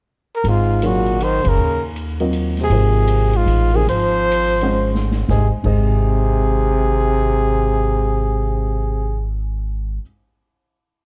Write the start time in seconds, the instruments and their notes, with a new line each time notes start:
0.36 trumpet A#4
0.44 upright bass G#1, trombone G#2, ride
0.49 trumpet F4
0.82 trombone A#2, grand piano F#3 A#3 D#4 G#4 C#5, hi-hat pedal, ride
0.86 trumpet F#4
1.06 ride
1.20 trombone D#3, trumpet C5, hi-hat pedal, ride
1.44 upright bass F#1, trombone C#3, kick, ride
1.49 trumpet A#4
1.57 upright bass D#2
1.96 hi-hat pedal, ride
2.20 grand piano F#3 C4 F4 A#4 D#5, ride
2.33 hi-hat pedal, ride
2.57 trombone C3, snare, ride
2.64 trumpet G#4
2.70 upright bass G#1, grand piano F3 A#3 D#4 G#4 C5, ride
3.07 hi-hat pedal, ride
3.33 trombone G#2, trumpet F4, ride
3.46 upright bass A1, hi-hat pedal, ride
3.73 trombone C3, grand piano F3 A#3 D#4 G#4 A#4, trumpet G#4
3.87 upright bass G#1, trombone F3, trumpet C5, ride
4.32 hi-hat pedal, ride
4.61 grand piano G#3 C#4 C5 D#5 F#5, ride
4.95 snare
5.11 snare
5.28 upright bass G#1, grand piano G#2 G#3 D#4 C5 D#5, trombone C3, trumpet G#4, kick, snare
5.63 upright bass G#1, grand piano G#2 G#3 D#4 C5 D#5, trombone C3, trumpet G#4, kick, crash